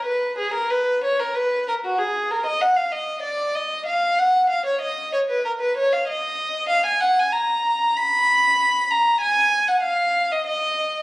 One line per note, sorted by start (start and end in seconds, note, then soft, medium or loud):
0.05 0.37 B4 medium
0.38 0.54 G#4 medium
0.54 0.70 A#4 medium
0.70 1.03 B4 medium
1.04 1.19 C#5 medium
1.19 1.35 A#4 medium
1.35 1.66 B4 medium
1.68 1.74 A#4 medium
1.85 1.99 F#4 medium
1.98 2.30 G#4 medium
2.31 2.46 A#4 medium
2.46 2.61 D#5 medium
2.61 2.77 F#5 medium
2.76 2.93 F5 medium
2.92 3.24 D#5 medium
3.23 3.54 D5 medium
3.55 3.87 D#5 medium
3.86 4.18 F5 medium
4.19 4.51 F#5 medium
4.50 4.66 F5 medium
4.66 4.82 C#5 medium
4.81 5.13 D#5 medium
5.13 5.20 C#5 medium
5.30 5.46 B4 medium
5.45 5.51 A#4 medium
5.61 5.77 B4 medium
5.77 5.93 C#5 medium
5.93 6.09 F5 medium
6.08 6.69 D#5 medium
6.69 6.86 F5 medium
6.86 7.02 G#5 medium
7.01 7.18 F#5 medium
7.19 7.35 G#5 medium
7.32 7.95 A#5 medium
7.97 8.91 B5 medium
8.90 9.22 A#5 medium
9.21 9.67 G#5 medium
9.68 9.84 F#5 medium
9.83 10.30 F5 medium
10.31 10.46 D#5 medium
10.47 11.02 D#5 medium